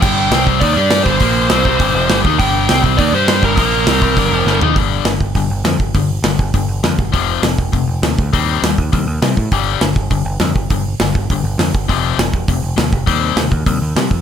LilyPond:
<<
  \new Staff \with { instrumentName = "Lead electric guitar" } { \time 4/4 \key g \minor \tempo 4 = 202 g''4. r8 d''8 d''4 c''8~ | c''2.~ c''8 r8 | g''4. r8 d''8 c''4 bes'8~ | bes'2.~ bes'8 r8 |
r1 | r1 | r1 | r1 |
r1 | r1 | r1 | r1 | }
  \new Staff \with { instrumentName = "Overdriven electric guitar" } { \clef bass \time 4/4 \key g \minor <g, d g>4 <c g c'>4 <ees bes ees'>8 <g d' g'>4 <g, d g>8 | <bes, f bes>4 <c g c'>8 <c g c'>8 <g, d g>8 <f, c f>8 <g, d g>8 <ees bes ees'>8 | <g, d g>4 <c g c'>4 <ees bes ees'>8 <g d' g'>4 <g, d g>8 | <bes, f bes>4 <c g c'>8 <c g c'>8 <g, d g>8 <f, c f>8 <g, d g>8 <ees bes ees'>8 |
r1 | r1 | r1 | r1 |
r1 | r1 | r1 | r1 | }
  \new Staff \with { instrumentName = "Distorted electric guitar" } { \clef bass \time 4/4 \key g \minor <g, d g>4 <c g c'>4 <ees bes ees'>8 <g d' g'>4 <g, d g>8 | <bes, f bes>4 <c g c'>8 <c g c'>8 <g, d g>8 <f, c f>8 <g, d g>8 <ees bes ees'>8 | <g, d g>4 <c g c'>4 <ees bes ees'>8 <g d' g'>4 <g, d g>8 | <bes, f bes>4 <c g c'>8 <c g c'>8 <g, d g>8 <f, c f>8 <g, d g>8 <ees bes ees'>8 |
<g, d g>4 <g, d>8 r8 <g, d>8 r8 <g, d>8 r8 | <g, d>8 r8 <g, d>8 r8 <g, d>8 r8 <g, d>8 r8 | <f, c f>4 <f, c>8 r8 <f, c>8 r8 <f, c>8 r8 | <c g c'>4 <c g>8 r8 <c g>8 r8 <c g>8 r8 |
<g, d g>4 <g, d>8 r8 <g, d>8 r8 <g, d>8 r8 | <g, d>8 r8 <g, d>8 r8 <g, d>8 r8 <g, d>8 r8 | <f, c f>4 <f, c>8 r8 <f, c>8 r8 <f, c>8 r8 | <c g c'>4 <c g>8 r8 <c g>8 r8 <c g>8 r8 | }
  \new Staff \with { instrumentName = "Picked electric bass" } { \clef bass \time 4/4 \key g \minor g,,4 c,4 ees,8 g,4 g,,8 | bes,,4 c,8 c,8 g,,8 f,,8 g,,8 ees,8 | g,,4 c,4 ees,8 g,4 g,,8 | bes,,4 c,8 c,8 g,,8 f,,8 g,,8 ees,8 |
g,,4 g,,8 g,,8 g,,8 g,,8 f,8 g,,8 | g,,4 g,,8 g,,8 g,,8 g,,8 f,8 g,,8 | f,,4 f,,8 f,,8 f,,8 f,,8 ees,8 d,8 | ees,4 ees,8 ees,8 ees,8 ees,8 c8 a,8 |
g,,4 g,,8 g,,8 g,,8 g,,8 f,8 g,,8 | g,,4 g,,8 g,,8 g,,8 g,,8 f,8 g,,8 | f,,4 f,,8 f,,8 f,,8 f,,8 ees,8 f,,8 | ees,4 ees,8 ees,8 ees,8 ees,8 c8 f,8 | }
  \new DrumStaff \with { instrumentName = "Drums" } \drummode { \time 4/4 <cymc hho bd>4 <hho sn>8 bd8 <hho bd>4 <hho sn>8 bd8 | <hho bd>4 <hho sn>8 bd8 <hho bd>4 <hho sn>8 bd8 | <hho bd>4 <hho sn>8 bd8 <hho bd>4 <hho sn>8 bd8 | <hho bd>4 <hho sn>8 bd8 <hho bd>4 sn8 tomfh8 |
<hho bd>4 <hho sn>8 bd8 <hho bd>4 <hho sn>8 bd8 | <hho bd>4 <hho sn>8 bd8 <hho bd>4 <hho sn>8 bd8 | <hho bd>4 <hho sn>8 bd8 <hho bd>4 <hho sn>8 bd8 | <hho bd>4 <hho sn>8 bd8 <hho bd>4 <hho sn>8 bd8 |
<hho bd>4 <hho sn>8 bd8 <hho bd>4 <hho sn>8 bd8 | <hho bd>4 <hho sn>8 bd8 <hho bd>4 <hho sn>8 bd8 | <hho bd>4 <hho sn>8 bd8 <hho bd>4 <hho sn>8 bd8 | <hho bd>4 <hho sn>8 bd8 <hho bd>4 <hho sn>8 bd8 | }
>>